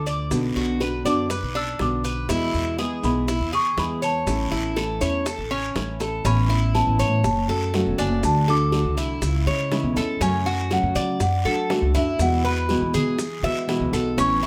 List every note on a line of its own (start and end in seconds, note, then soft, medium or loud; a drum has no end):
0.00 0.29 D2 medium
0.00 0.30 D3 soft
0.00 0.30 A3 soft
0.00 0.31 D4 medium
0.00 0.31 F4 medium
0.00 0.29 D6 medium
0.06 0.55 D5 medium
0.06 short guiro medium
0.06 maracas medium
0.30 0.55 B1 medium
0.30 0.79 B2 medium
0.30 0.79 D3 medium
0.30 0.80 B3 medium
0.30 0.80 D4 medium
0.30 0.80 F#4 medium
0.30 high bongo medium
0.30 long guiro medium
0.30 maracas medium
0.56 1.03 B1 medium
0.56 0.80 F#4 medium
0.56 high bongo soft
0.56 maracas soft
0.80 1.04 D3 soft
0.80 1.05 B3 medium
0.80 1.04 D4 medium
0.80 1.04 F#4 medium
0.80 1.05 B4 medium
0.80 high bongo medium
0.80 short guiro medium
0.80 maracas soft
1.05 1.41 F#2 medium
1.05 1.29 D3 medium
1.05 1.29 B3 medium
1.05 1.29 D4 medium
1.05 1.29 F#4 medium
1.05 1.29 D5 medium
1.05 1.57 D6 medium
1.05 short guiro medium
1.05 maracas medium
1.30 1.54 B4 medium
1.30 muted nylon-string guitar stroke medium
1.30 high bongo medium
1.30 long guiro medium
1.30 maracas medium
1.42 1.78 B1 medium
1.55 2.03 D4 medium
1.55 1.81 E6 loud
1.55 high bongo soft
1.55 maracas soft
1.79 2.27 B1 medium
1.79 2.28 D3 medium
1.79 2.28 B3 medium
1.79 2.29 D4 medium
1.79 2.29 F#4 medium
1.79 2.27 D6 medium
1.79 high bongo medium
1.79 low bongo medium
1.79 short guiro medium
1.79 maracas soft
2.04 2.29 B4 medium
2.04 high bongo soft
2.04 short guiro medium
2.04 maracas medium
2.29 2.53 E2 medium
2.29 2.78 B2 medium
2.29 2.77 E3 medium
2.29 2.78 G#3 medium
2.29 2.78 B3 medium
2.29 2.77 E4 medium
2.29 2.78 E4 medium
2.29 high bongo medium
2.29 long guiro medium
2.29 maracas medium
2.54 3.01 E2 medium
2.54 maracas soft
2.78 3.02 E3 soft
2.78 3.03 G#3 medium
2.78 3.03 B3 medium
2.78 3.02 E4 medium
2.78 3.27 G#4 medium
2.78 high bongo medium
2.78 short guiro medium
2.78 maracas soft
3.03 3.39 B1 medium
3.03 3.27 E3 medium
3.03 3.27 G#3 medium
3.03 3.27 B3 medium
3.03 3.27 E4 medium
3.03 3.55 B5 medium
3.03 short guiro medium
3.03 maracas medium
3.28 3.52 E4 medium
3.28 muted nylon-string guitar stroke medium
3.28 high bongo medium
3.28 long guiro medium
3.28 maracas medium
3.40 3.76 E2 medium
3.53 4.01 G#4 medium
3.53 3.79 C#6 loud
3.53 maracas soft
3.77 4.25 E2 medium
3.77 4.25 E3 medium
3.77 4.26 G#3 medium
3.77 4.26 B3 medium
3.77 4.27 E4 medium
3.77 4.04 B5 medium
3.77 high bongo medium
3.77 low bongo medium
3.77 short guiro medium
3.77 maracas soft
4.02 4.50 C#5 medium
4.02 5.97 A5 medium
4.02 short guiro medium
4.02 maracas medium
4.27 4.50 A1 medium
4.27 4.75 E3 medium
4.27 4.75 A3 medium
4.27 4.76 C#4 medium
4.27 4.76 E4 medium
4.27 high bongo medium
4.27 long guiro medium
4.27 maracas medium
4.52 4.99 A1 medium
4.52 4.76 E4 medium
4.52 high bongo soft
4.52 maracas soft
4.76 5.00 E3 medium
4.76 5.00 A3 medium
4.76 5.01 C#4 medium
4.76 5.00 E4 medium
4.76 5.01 A4 medium
4.76 high bongo medium
4.76 short guiro medium
4.76 maracas soft
5.01 5.37 E2 medium
5.01 5.25 A3 medium
5.01 5.25 C#4 medium
5.01 5.25 E4 medium
5.01 5.25 C#5 medium
5.01 short guiro medium
5.01 maracas medium
5.26 5.50 A4 medium
5.26 muted nylon-string guitar stroke medium
5.26 high bongo medium
5.26 long guiro medium
5.26 maracas medium
5.38 5.74 A1 medium
5.51 5.99 C#4 medium
5.51 high bongo soft
5.51 maracas soft
5.75 6.23 A1 medium
5.75 6.23 E3 medium
5.75 6.24 A3 medium
5.75 6.25 C#4 medium
5.75 6.25 E4 medium
5.75 high bongo medium
5.75 low bongo medium
5.75 short guiro medium
5.75 maracas soft
6.00 6.24 A4 medium
6.00 high bongo medium
6.00 short guiro medium
6.00 maracas medium
6.24 6.84 A1 loud
6.24 6.49 E3 medium
6.24 6.49 B3 medium
6.24 6.49 C#4 medium
6.24 6.48 E4 medium
6.24 6.77 B5 loud
6.24 high bongo medium
6.24 long guiro medium
6.24 maracas medium
6.49 6.73 B3 soft
6.49 6.74 C#4 soft
6.49 6.73 E4 soft
6.49 6.98 E4 medium
6.49 maracas soft
6.73 7.23 E3 medium
6.73 7.23 B3 medium
6.73 7.23 C#4 medium
6.73 7.24 E4 medium
6.73 7.23 A5 loud
6.73 high bongo medium
6.73 short guiro medium
6.73 maracas soft
6.87 7.01 A1 medium
6.99 7.23 A2 medium
6.99 7.47 C#5 medium
6.99 short guiro medium
6.99 maracas medium
7.23 7.48 F#1 medium
7.23 7.70 A5 medium
7.23 muted nylon-string guitar stroke medium
7.23 high bongo medium
7.23 long guiro medium
7.23 maracas medium
7.48 7.84 F#2 loud
7.48 7.73 A3 soft
7.48 7.73 C#4 soft
7.48 7.72 F#4 soft
7.48 7.97 A4 medium
7.48 maracas soft
7.73 7.97 C#3 medium
7.73 7.98 F#3 medium
7.73 7.98 A3 medium
7.73 7.97 C#4 medium
7.73 7.97 F#4 medium
7.73 high bongo medium
7.73 low bongo medium
7.73 short guiro medium
7.73 maracas soft
7.86 7.98 E1 medium
7.98 8.22 F#1 medium
7.98 8.22 A3 soft
7.98 8.22 C#4 soft
7.98 8.46 D4 medium
7.98 8.22 F#4 medium
7.98 8.22 G#5 medium
7.98 short guiro medium
7.98 maracas medium
8.23 8.82 D2 loud
8.23 8.47 D3 medium
8.23 8.47 A3 medium
8.23 8.47 D4 medium
8.23 8.46 F#4 medium
8.23 8.50 A5 loud
8.23 high bongo medium
8.23 long guiro medium
8.23 maracas medium
8.48 8.72 A3 soft
8.48 8.72 D4 soft
8.48 8.72 F#4 soft
8.48 8.96 A4 medium
8.48 8.95 D6 loud
8.48 high bongo soft
8.48 maracas soft
8.72 9.21 D3 medium
8.72 9.22 A3 medium
8.72 9.22 D4 medium
8.72 9.22 F#4 medium
8.72 high bongo medium
8.72 short guiro medium
8.72 maracas soft
8.85 8.97 D2 medium
8.97 9.21 C2 medium
8.97 9.46 E4 medium
8.97 short guiro medium
8.97 maracas medium
9.22 9.46 C#2 loud
9.22 muted nylon-string guitar stroke medium
9.22 high bongo medium
9.22 long guiro medium
9.22 maracas medium
9.46 9.82 C#3 medium
9.46 9.71 G#3 soft
9.46 9.71 C#4 soft
9.46 9.70 E4 soft
9.46 9.95 C#5 medium
9.46 high bongo soft
9.46 maracas soft
9.71 9.95 C#3 medium
9.71 9.95 E3 medium
9.71 9.96 G#3 medium
9.71 9.95 C#4 medium
9.71 9.95 E4 medium
9.71 high bongo medium
9.71 low bongo medium
9.71 short guiro medium
9.71 maracas soft
9.83 9.95 B1 medium
9.96 10.20 E2 medium
9.96 10.21 G#3 soft
9.96 10.20 C#4 soft
9.96 10.20 E4 medium
9.96 10.21 A4 medium
9.96 high bongo soft
9.96 short guiro medium
9.96 maracas medium
10.21 10.80 F#2 loud
10.21 10.45 C#3 medium
10.21 10.45 F#3 medium
10.21 10.45 A3 medium
10.21 10.45 C#4 medium
10.21 10.44 F#4 medium
10.21 10.68 G#5 loud
10.21 high bongo medium
10.21 long guiro medium
10.21 maracas medium
10.45 10.69 A3 soft
10.45 10.70 C#4 soft
10.45 10.70 F#4 soft
10.45 10.94 F#4 medium
10.45 maracas soft
10.70 11.19 C#3 medium
10.70 11.19 F#3 medium
10.70 11.19 A3 medium
10.70 11.20 C#4 medium
10.70 11.20 F#4 medium
10.70 11.21 F#5 loud
10.70 high bongo medium
10.70 short guiro medium
10.70 maracas soft
10.83 10.97 F#2 loud
10.95 11.19 F#3 loud
10.95 11.44 D5 medium
10.95 short guiro medium
10.95 maracas medium
11.20 11.44 F#2 medium
11.20 11.68 F#5 medium
11.20 muted nylon-string guitar stroke medium
11.20 high bongo medium
11.20 long guiro medium
11.20 maracas medium
11.45 11.81 F#3 medium
11.45 11.69 A3 soft
11.45 11.69 D4 soft
11.45 11.69 F#4 soft
11.45 11.93 A4 medium
11.45 maracas soft
11.69 11.93 D3 medium
11.69 11.94 A3 medium
11.69 11.94 D4 medium
11.69 11.93 F#4 medium
11.69 high bongo medium
11.69 low bongo medium
11.69 short guiro medium
11.69 maracas soft
11.82 11.94 C#2 medium
11.94 12.18 F#2 medium
11.94 12.19 A3 soft
11.94 12.19 D4 soft
11.94 12.43 E4 medium
11.94 12.18 F#4 medium
11.94 12.22 E5 medium
11.94 short guiro medium
11.94 maracas medium
12.19 12.78 E2 loud
12.19 12.43 B2 medium
12.19 12.44 E3 medium
12.19 12.44 G#3 medium
12.19 12.44 B3 medium
12.19 12.43 F#4 medium
12.19 12.46 F#5 loud
12.19 high bongo medium
12.19 long guiro medium
12.19 maracas medium
12.44 12.68 G#3 soft
12.44 12.69 B3 soft
12.44 12.68 F#4 soft
12.44 12.93 B4 medium
12.44 12.92 B5 loud
12.44 high bongo soft
12.44 maracas soft
12.69 13.17 B2 medium
12.69 13.17 E3 medium
12.69 13.18 G#3 medium
12.69 13.18 B3 medium
12.69 13.18 F#4 medium
12.69 high bongo medium
12.69 short guiro medium
12.69 maracas soft
12.82 12.95 E2 medium
12.94 13.41 E3 medium
12.94 13.42 G#4 medium
12.94 short guiro medium
12.94 maracas medium
13.18 muted nylon-string guitar stroke medium
13.18 high bongo medium
13.18 long guiro medium
13.18 maracas medium
13.43 13.79 E3 medium
13.43 13.67 G#3 soft
13.43 13.68 B3 soft
13.43 13.67 F#4 medium
13.43 13.92 E5 medium
13.43 high bongo soft
13.43 maracas soft
13.67 13.92 B2 medium
13.67 13.92 E3 medium
13.67 13.92 G#3 medium
13.67 13.92 B3 medium
13.67 13.91 F#4 medium
13.67 high bongo medium
13.67 low bongo medium
13.67 short guiro medium
13.67 maracas soft
13.80 13.92 C#2 medium
13.92 14.17 B1 medium
13.92 14.18 G#3 soft
13.92 14.17 B3 soft
13.92 14.17 F#4 medium
13.92 14.17 A4 medium
13.92 high bongo soft
13.92 short guiro medium
13.92 maracas medium
14.17 14.47 A1 loud
14.17 14.42 E3 medium
14.17 14.42 B3 medium
14.17 14.42 C#4 medium
14.17 14.41 E4 medium
14.17 14.47 C#6 loud
14.17 high bongo medium
14.17 long guiro medium
14.17 maracas medium
14.42 14.47 C#4 soft
14.42 14.47 E4 soft
14.42 14.47 E4 medium
14.42 maracas soft